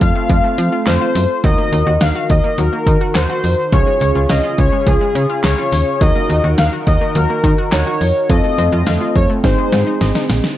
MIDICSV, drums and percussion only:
0, 0, Header, 1, 2, 480
1, 0, Start_track
1, 0, Tempo, 571429
1, 1209, Time_signature, 4, 2, 24, 8
1, 8884, End_track
2, 0, Start_track
2, 0, Title_t, "Drums"
2, 10, Note_on_c, 9, 42, 76
2, 11, Note_on_c, 9, 36, 90
2, 94, Note_off_c, 9, 42, 0
2, 95, Note_off_c, 9, 36, 0
2, 248, Note_on_c, 9, 36, 94
2, 248, Note_on_c, 9, 42, 79
2, 332, Note_off_c, 9, 36, 0
2, 332, Note_off_c, 9, 42, 0
2, 489, Note_on_c, 9, 42, 75
2, 573, Note_off_c, 9, 42, 0
2, 728, Note_on_c, 9, 38, 104
2, 728, Note_on_c, 9, 39, 88
2, 730, Note_on_c, 9, 42, 72
2, 812, Note_off_c, 9, 38, 0
2, 812, Note_off_c, 9, 39, 0
2, 814, Note_off_c, 9, 42, 0
2, 969, Note_on_c, 9, 46, 78
2, 1053, Note_off_c, 9, 46, 0
2, 1208, Note_on_c, 9, 42, 84
2, 1209, Note_on_c, 9, 36, 122
2, 1292, Note_off_c, 9, 42, 0
2, 1293, Note_off_c, 9, 36, 0
2, 1451, Note_on_c, 9, 42, 77
2, 1535, Note_off_c, 9, 42, 0
2, 1686, Note_on_c, 9, 42, 76
2, 1688, Note_on_c, 9, 38, 107
2, 1770, Note_off_c, 9, 42, 0
2, 1772, Note_off_c, 9, 38, 0
2, 1930, Note_on_c, 9, 42, 76
2, 1931, Note_on_c, 9, 36, 92
2, 2014, Note_off_c, 9, 42, 0
2, 2015, Note_off_c, 9, 36, 0
2, 2167, Note_on_c, 9, 42, 78
2, 2251, Note_off_c, 9, 42, 0
2, 2407, Note_on_c, 9, 36, 94
2, 2409, Note_on_c, 9, 42, 74
2, 2491, Note_off_c, 9, 36, 0
2, 2493, Note_off_c, 9, 42, 0
2, 2648, Note_on_c, 9, 38, 106
2, 2648, Note_on_c, 9, 39, 88
2, 2649, Note_on_c, 9, 42, 76
2, 2732, Note_off_c, 9, 38, 0
2, 2732, Note_off_c, 9, 39, 0
2, 2733, Note_off_c, 9, 42, 0
2, 2888, Note_on_c, 9, 46, 80
2, 2972, Note_off_c, 9, 46, 0
2, 3128, Note_on_c, 9, 42, 84
2, 3129, Note_on_c, 9, 36, 116
2, 3212, Note_off_c, 9, 42, 0
2, 3213, Note_off_c, 9, 36, 0
2, 3370, Note_on_c, 9, 42, 77
2, 3454, Note_off_c, 9, 42, 0
2, 3607, Note_on_c, 9, 42, 79
2, 3608, Note_on_c, 9, 38, 108
2, 3691, Note_off_c, 9, 42, 0
2, 3692, Note_off_c, 9, 38, 0
2, 3850, Note_on_c, 9, 42, 77
2, 3851, Note_on_c, 9, 36, 94
2, 3934, Note_off_c, 9, 42, 0
2, 3935, Note_off_c, 9, 36, 0
2, 4088, Note_on_c, 9, 36, 90
2, 4088, Note_on_c, 9, 42, 78
2, 4172, Note_off_c, 9, 36, 0
2, 4172, Note_off_c, 9, 42, 0
2, 4329, Note_on_c, 9, 42, 78
2, 4413, Note_off_c, 9, 42, 0
2, 4568, Note_on_c, 9, 38, 108
2, 4568, Note_on_c, 9, 39, 87
2, 4570, Note_on_c, 9, 42, 76
2, 4652, Note_off_c, 9, 38, 0
2, 4652, Note_off_c, 9, 39, 0
2, 4654, Note_off_c, 9, 42, 0
2, 4809, Note_on_c, 9, 46, 77
2, 4893, Note_off_c, 9, 46, 0
2, 5049, Note_on_c, 9, 36, 121
2, 5049, Note_on_c, 9, 42, 84
2, 5133, Note_off_c, 9, 36, 0
2, 5133, Note_off_c, 9, 42, 0
2, 5292, Note_on_c, 9, 42, 77
2, 5376, Note_off_c, 9, 42, 0
2, 5526, Note_on_c, 9, 42, 74
2, 5528, Note_on_c, 9, 38, 106
2, 5610, Note_off_c, 9, 42, 0
2, 5612, Note_off_c, 9, 38, 0
2, 5770, Note_on_c, 9, 42, 76
2, 5771, Note_on_c, 9, 36, 93
2, 5854, Note_off_c, 9, 42, 0
2, 5855, Note_off_c, 9, 36, 0
2, 6008, Note_on_c, 9, 42, 77
2, 6092, Note_off_c, 9, 42, 0
2, 6247, Note_on_c, 9, 36, 94
2, 6249, Note_on_c, 9, 42, 76
2, 6331, Note_off_c, 9, 36, 0
2, 6333, Note_off_c, 9, 42, 0
2, 6487, Note_on_c, 9, 38, 107
2, 6487, Note_on_c, 9, 39, 85
2, 6489, Note_on_c, 9, 42, 78
2, 6571, Note_off_c, 9, 38, 0
2, 6571, Note_off_c, 9, 39, 0
2, 6573, Note_off_c, 9, 42, 0
2, 6728, Note_on_c, 9, 46, 80
2, 6812, Note_off_c, 9, 46, 0
2, 6969, Note_on_c, 9, 36, 120
2, 6969, Note_on_c, 9, 42, 82
2, 7053, Note_off_c, 9, 36, 0
2, 7053, Note_off_c, 9, 42, 0
2, 7211, Note_on_c, 9, 42, 80
2, 7295, Note_off_c, 9, 42, 0
2, 7447, Note_on_c, 9, 42, 76
2, 7449, Note_on_c, 9, 38, 106
2, 7531, Note_off_c, 9, 42, 0
2, 7533, Note_off_c, 9, 38, 0
2, 7691, Note_on_c, 9, 42, 75
2, 7692, Note_on_c, 9, 36, 89
2, 7775, Note_off_c, 9, 42, 0
2, 7776, Note_off_c, 9, 36, 0
2, 7929, Note_on_c, 9, 36, 92
2, 7929, Note_on_c, 9, 42, 79
2, 7930, Note_on_c, 9, 38, 61
2, 8013, Note_off_c, 9, 36, 0
2, 8013, Note_off_c, 9, 42, 0
2, 8014, Note_off_c, 9, 38, 0
2, 8169, Note_on_c, 9, 38, 76
2, 8169, Note_on_c, 9, 42, 75
2, 8253, Note_off_c, 9, 38, 0
2, 8253, Note_off_c, 9, 42, 0
2, 8408, Note_on_c, 9, 38, 92
2, 8409, Note_on_c, 9, 42, 73
2, 8492, Note_off_c, 9, 38, 0
2, 8493, Note_off_c, 9, 42, 0
2, 8528, Note_on_c, 9, 38, 79
2, 8612, Note_off_c, 9, 38, 0
2, 8648, Note_on_c, 9, 46, 80
2, 8649, Note_on_c, 9, 38, 104
2, 8732, Note_off_c, 9, 46, 0
2, 8733, Note_off_c, 9, 38, 0
2, 8769, Note_on_c, 9, 38, 97
2, 8853, Note_off_c, 9, 38, 0
2, 8884, End_track
0, 0, End_of_file